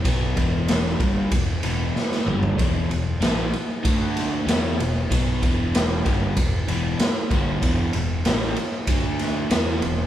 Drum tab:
RD |x-x-x-x-x-x-----|x-x-x-x-x-x-x-x-|x-x-x-x-x-x-x-x-|x-x-x-x-x-x-x-x-|
SD |----oo------oo--|----o-----o-o---|----o-------o---|----oo----o-o---|
T2 |--------------o-|----------------|----------------|----------------|
FT |---------------o|----------------|----------------|----------------|
BD |o-o---o-o-------|o-------o-------|o-o---o-o-----o-|o-------o-------|